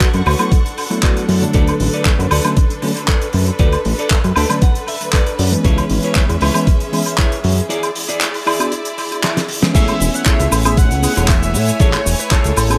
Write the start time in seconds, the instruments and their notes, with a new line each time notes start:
Already playing: string section D4 A4 F#5 C#6
0.00 kick, clap, closed hi-hat
0.14 analog synth bass F#2, closed hi-hat
0.26 analog synth bass D2, clean electric guitar F#4 B4 C#5, open hi-hat, high woodblock
0.39 tine electric piano F#3 A3 B3 E4, closed hi-hat, high woodblock
0.52 kick, closed hi-hat
0.66 closed hi-hat
0.77 muted clean electric guitar stroke, open hi-hat
0.90 tine electric piano F#3 A3 B3 E4, closed hi-hat
1.02 clean electric guitar F#4 B4 D5, kick, clap, closed hi-hat
1.17 closed hi-hat
1.29 analog synth bass F#2, open hi-hat
1.41 tine electric piano D3 F#3 A3 D4, muted clean electric guitar stroke, closed hi-hat
1.53 analog synth bass D2, clean electric guitar A4 B4 D5, string section B4, kick, closed hi-hat
1.67 closed hi-hat, high woodblock
1.80 analog synth bass A1, open hi-hat
1.93 clean electric guitar A4 B4 D5, closed hi-hat
2.05 kick, clap, closed hi-hat
2.19 analog synth bass F#2, closed hi-hat
2.31 analog synth bass D2, clean electric guitar A4 B4 D5, open hi-hat, high woodblock
2.44 tine electric piano D3 F#3 A3 C#4, closed hi-hat, high woodblock
2.57 kick, closed hi-hat
2.70 closed hi-hat
2.82 tine electric piano D3 F#3 A3 C#4, muted clean electric guitar stroke, open hi-hat
2.97 closed hi-hat
3.08 clean electric guitar A4 B4 D5, kick, clap, closed hi-hat
3.22 closed hi-hat
3.33 analog synth bass F#2, open hi-hat
3.46 muted clean electric guitar stroke, closed hi-hat
3.59 analog synth bass D2, clean electric guitar A4 B4 D5, kick, closed hi-hat
3.72 closed hi-hat, high woodblock
3.85 analog synth bass A1, open hi-hat
3.98 clean electric guitar A4 B4 D5, closed hi-hat
4.10 kick, clap, closed hi-hat
4.24 analog synth bass F#2, closed hi-hat
4.36 analog synth bass D2, clean electric guitar A4 B4 D5 A5, open hi-hat, high woodblock
4.49 tine electric piano D3 F#3 A3 C#4, closed hi-hat, high woodblock
4.62 clean electric guitar F#5, kick, closed hi-hat
4.75 closed hi-hat
4.88 clean electric guitar E5, muted clean electric guitar stroke, open hi-hat
5.01 closed hi-hat
5.13 clean electric guitar A4 B4 D5, kick, clap, closed hi-hat
5.26 closed hi-hat
5.39 analog synth bass F#2, clean electric guitar D5, open hi-hat
5.52 tine electric piano E3 G#3 B3 C#4, muted clean electric guitar stroke, closed hi-hat
5.64 analog synth bass C#2, string section C#4 G#4 E5, clean electric guitar E4 B4 C#5, kick, closed hi-hat
5.78 closed hi-hat, high woodblock
5.90 analog synth bass G#1, open hi-hat
6.03 clean electric guitar E4 B4 C#5, closed hi-hat
6.15 kick, clap, closed hi-hat
6.29 analog synth bass E2, closed hi-hat
6.41 analog synth bass C#2, clean electric guitar E4 B4 C#5, open hi-hat, high woodblock
6.54 tine electric piano E3 G#3 B3 C#4, closed hi-hat, high woodblock
6.67 kick, closed hi-hat
6.80 closed hi-hat
6.92 tine electric piano E3 G#3 B3 C#4, muted clean electric guitar stroke, open hi-hat
7.07 closed hi-hat
7.18 clean electric guitar E4 B4 C#5, kick, clap, closed hi-hat
7.32 closed hi-hat
7.44 analog synth bass F#2, open hi-hat
7.57 muted clean electric guitar stroke, closed hi-hat
7.69 clean electric guitar E4 G#4 D5, string section E4 D5, closed hi-hat
7.83 closed hi-hat, high woodblock
7.95 open hi-hat
8.08 clean electric guitar E4 G#4 D5, closed hi-hat
8.21 clap, closed hi-hat
8.34 open hi-hat
8.46 clean electric guitar E4 G#4 D5, open hi-hat, high woodblock
8.59 tine electric piano B3 D4 F#4 G#4, closed hi-hat, high woodblock
8.72 closed hi-hat
8.85 closed hi-hat
8.97 muted clean electric guitar stroke, open hi-hat
9.12 closed hi-hat
9.23 clean electric guitar E4 G#4 D5 E5, snare, clap, closed hi-hat
9.37 snare, closed hi-hat
9.48 open hi-hat
9.62 tine electric piano E3 G#3 B3 C#4, snare, closed hi-hat
9.74 analog synth bass A1, string section A3 E4 C#5 G#5, tine electric piano B3 C#4 E4 G#5, clean electric guitar E4 G#4 A4 C#5, analog synth lead E5, kick, closed hi-hat, crash, cabasa
9.88 closed hi-hat, high woodblock
10.00 analog synth bass E1, open hi-hat, cabasa
10.14 analog synth lead F#5, muted clean electric guitar stroke, closed hi-hat, cabasa
10.26 clean electric guitar E4 G#4 A4 C#5, analog synth lead E5, kick, clap, closed hi-hat, cabasa
10.40 analog synth bass C#2, closed hi-hat, cabasa
10.52 analog synth bass A1, open hi-hat, cabasa, high woodblock
10.65 tine electric piano B3 C#4 E4 G#4, analog synth lead E5, closed hi-hat, cabasa, high woodblock
10.77 analog synth lead F#5, kick, closed hi-hat, cabasa
10.91 analog synth bass C#2, closed hi-hat, cabasa
11.02 tine electric piano B3 C#4 E4 G#4, muted clean electric guitar stroke, open hi-hat, cabasa
11.16 analog synth bass E1, clean electric guitar E4 G#4 A4 C#5, closed hi-hat, cabasa
11.28 analog synth lead E5, kick, clap, closed hi-hat, cabasa
11.42 muted clean electric guitar stroke, closed hi-hat, cabasa
11.54 analog synth bass A2, open hi-hat, cabasa
11.68 closed hi-hat, cabasa
11.80 analog synth bass A1, clean electric guitar E4 G#4 A4 C#5, analog synth lead C#5, kick, closed hi-hat, cabasa
11.93 clap, closed hi-hat, high woodblock
12.06 analog synth bass E1, open hi-hat, cabasa
12.19 analog synth lead B4, muted clean electric guitar stroke, closed hi-hat, cabasa
12.31 clean electric guitar E4 G#4 A4 C#5, analog synth lead A4, kick, clap, closed hi-hat, cabasa
12.44 analog synth bass C#2, closed hi-hat, cabasa
12.56 analog synth bass A1, open hi-hat, cabasa, high woodblock
12.70 tine electric piano B3 C#4 E4 G#4, closed hi-hat, cabasa, high woodblock